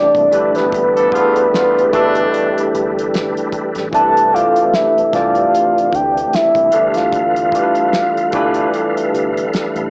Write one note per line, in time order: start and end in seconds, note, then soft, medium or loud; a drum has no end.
0.00 0.30 C3 medium
0.00 0.10 E3 medium
0.00 0.29 E3 medium
0.00 0.31 E3 medium
0.00 0.29 A3 medium
0.00 0.32 A3 medium
0.00 0.11 D4 medium
0.00 0.30 D4 medium
0.00 0.33 D4 medium
0.00 0.10 G4 medium
0.00 0.34 G4 medium
0.00 0.34 C5 medium
0.00 0.55 D5 loud
0.15 0.30 C2 medium
0.15 kick medium
0.15 closed hi-hat soft
0.31 1.18 G1 loud
0.31 1.00 E3 medium
0.31 3.88 G3 medium
0.31 1.00 A3 medium
0.31 1.01 D4 medium
0.31 3.89 G4 medium
0.31 1.02 G4 medium
0.31 3.88 A4 medium
0.31 3.88 B4 medium
0.31 1.02 B4 medium
0.31 closed hi-hat medium
0.55 2.91 B4 medium
0.55 snare soft
0.55 closed hi-hat soft
0.72 kick loud
0.72 closed hi-hat medium
0.94 1.09 F3 medium
0.94 1.09 D4 medium
0.94 1.09 A4 medium
0.94 closed hi-hat soft
1.11 1.44 D3 medium
1.11 1.81 A3 medium
1.11 1.44 B3 medium
1.11 1.81 D4 medium
1.11 1.80 E4 medium
1.11 1.44 F4 medium
1.11 1.81 G4 medium
1.11 1.21 G#4 medium
1.11 kick medium
1.15 closed hi-hat medium
1.21 1.85 A4 medium
1.36 closed hi-hat soft
1.52 1.84 D3 medium
1.52 1.84 B3 medium
1.52 1.84 F4 medium
1.52 snare loud
1.52 closed hi-hat medium
1.76 1.83 G1 soft
1.76 closed hi-hat soft
1.92 2.26 G1 medium
1.92 2.68 B2 medium
1.92 3.27 E3 medium
1.92 3.28 A3 medium
1.92 2.68 A3 medium
1.92 2.68 D4 medium
1.92 3.28 D4 medium
1.92 3.29 G4 medium
1.92 2.01 A4 medium
1.92 kick loud
1.92 closed hi-hat medium
2.01 3.32 B4 loud
2.15 closed hi-hat soft
2.34 closed hi-hat medium
2.58 closed hi-hat medium
2.73 3.39 G1 medium
2.73 closed hi-hat medium
2.98 closed hi-hat soft
3.14 snare loud
3.14 closed hi-hat medium
3.37 closed hi-hat soft
3.52 3.62 A1 soft
3.52 kick medium
3.52 closed hi-hat medium
3.75 3.95 A1 medium
3.75 snare soft
3.75 closed hi-hat soft
3.91 4.45 C2 loud
3.91 6.70 C3 medium
3.91 4.26 E3 medium
3.91 6.70 E3 medium
3.91 4.27 A3 medium
3.91 6.70 A3 medium
3.91 6.70 D4 medium
3.91 4.27 D4 medium
3.91 4.27 G4 medium
3.91 4.28 B4 medium
3.91 4.35 A5 loud
3.91 kick loud
3.91 closed hi-hat medium
4.17 closed hi-hat medium
4.32 5.00 E3 medium
4.32 5.01 A3 medium
4.32 5.01 D4 medium
4.32 5.02 G4 medium
4.32 5.02 A4 medium
4.32 4.76 F5 loud
4.36 closed hi-hat medium
4.56 closed hi-hat soft
4.74 5.13 E5 loud
4.74 snare loud
4.74 closed hi-hat medium
4.96 5.03 C2 soft
4.96 closed hi-hat soft
5.13 5.46 C2 loud
5.13 6.48 E3 medium
5.13 6.48 A3 medium
5.13 6.49 D4 medium
5.13 6.49 G4 medium
5.13 6.50 D5 medium
5.13 5.97 F5 loud
5.13 kick loud
5.13 snare soft
5.13 closed hi-hat medium
5.35 closed hi-hat soft
5.55 closed hi-hat medium
5.78 closed hi-hat soft
5.93 6.26 D2 medium
5.93 6.36 G5 loud
5.93 kick medium
5.93 closed hi-hat medium
6.17 closed hi-hat soft
6.33 6.42 C2 soft
6.33 6.96 E5 loud
6.33 snare loud
6.33 closed hi-hat medium
6.55 6.70 C2 medium
6.55 kick medium
6.55 closed hi-hat soft
6.71 7.58 G1 medium
6.71 7.41 E3 medium
6.71 9.90 G3 medium
6.71 7.41 A3 medium
6.71 7.42 D4 medium
6.71 9.90 A4 medium
6.71 9.90 B4 medium
6.71 9.90 F5 medium
6.71 closed hi-hat medium
6.75 7.42 G4 medium
6.75 7.42 B4 medium
6.94 9.32 F5 medium
6.94 snare soft
6.94 closed hi-hat medium
7.13 kick loud
7.13 closed hi-hat medium
7.36 closed hi-hat soft
7.52 8.21 E3 medium
7.52 8.21 A3 medium
7.52 8.22 D4 medium
7.52 8.22 G4 medium
7.52 7.61 A4 medium
7.52 kick medium
7.52 closed hi-hat medium
7.62 8.26 B4 medium
7.75 closed hi-hat soft
7.93 snare loud
7.93 closed hi-hat medium
8.15 8.22 G1 soft
8.15 closed hi-hat soft
8.32 8.66 G1 medium
8.32 9.68 E3 medium
8.32 9.68 A3 medium
8.32 9.69 D4 medium
8.32 9.69 G4 medium
8.32 9.69 B4 loud
8.32 kick loud
8.32 closed hi-hat medium
8.54 closed hi-hat soft
8.74 closed hi-hat medium
8.97 closed hi-hat soft
9.13 9.46 G1 medium
9.13 closed hi-hat medium
9.37 closed hi-hat soft
9.53 9.62 A1 soft
9.53 snare loud
9.53 closed hi-hat medium
9.75 9.90 A1 medium
9.75 closed hi-hat soft